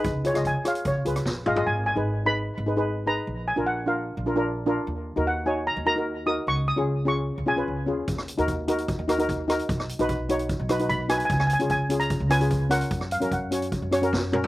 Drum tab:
HH |x-xxx-xxx-xx----|----------------|----------------|----------------|
SD |---r--r----ro---|----------------|----------------|----------------|
T2 |--------------o-|----------------|----------------|----------------|
FT |---------------o|----------------|----------------|----------------|
BD |o---o---o---o---|----------------|----------------|----------------|

HH |----------------|x-xxx-xxx-xxx-xx|x-xxx-xxx-xxx-xx|x-xxx-xxx-xxx-xx|
SD |----------------|-r--------r---r-|-r--------r---r-|-r--------r---r-|
T2 |----------------|----------------|----------------|----------------|
FT |----------------|----------------|----------------|----------------|
BD |----------------|o---o---o---o---|o---o---o---o---|o---o---o---o---|

HH |x-xxx-xxx-xx----|
SD |-r--------r-o---|
T2 |--------------o-|
FT |---------------o|
BD |o---o---o---o---|